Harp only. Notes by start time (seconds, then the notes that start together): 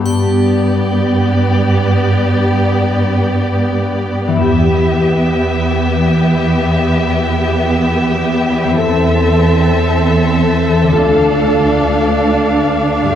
Already playing: G2 B3
0.00 D4 G4
4.27 E3
4.32 B3
4.37 E4
4.41 G4
8.64 E3
8.68 C4
8.73 E4
8.78 A4
10.84 D3
10.88 D4
10.92 F4
10.97 A4
13.02 G2
13.06 D4
13.11 G4